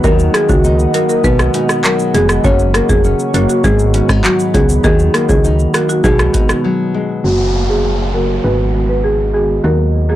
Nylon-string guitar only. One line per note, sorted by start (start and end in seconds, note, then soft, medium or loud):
0.00 0.10 G#2 medium
0.00 1.84 F#3 medium
0.00 0.10 B3 medium
0.05 1.24 D#3 medium
0.05 0.63 D#4 medium
0.34 0.93 A#3 medium
0.64 1.30 D#4 medium
0.95 1.30 A#3 medium
1.25 2.44 B2 medium
1.54 2.44 D#4 medium
1.84 3.67 F#3 medium
2.14 2.50 G#3 medium
2.45 3.03 C#4 medium
2.75 3.33 A#3 medium
3.05 3.70 C#4 medium
3.34 3.70 A#3 medium
3.64 4.90 G#2 medium
3.94 4.10 C#4 medium
4.10 4.84 D#4 medium
4.24 6.64 F#3 medium
4.54 4.90 B3 medium
4.84 6.04 D#3 medium
4.84 5.43 D#4 medium
5.14 5.73 A#3 medium
5.44 6.10 D#4 medium
5.74 6.10 A#3 medium
6.04 7.30 B2 medium
6.34 7.30 D#4 medium
6.64 7.80 F#3 medium
6.94 7.30 G#3 medium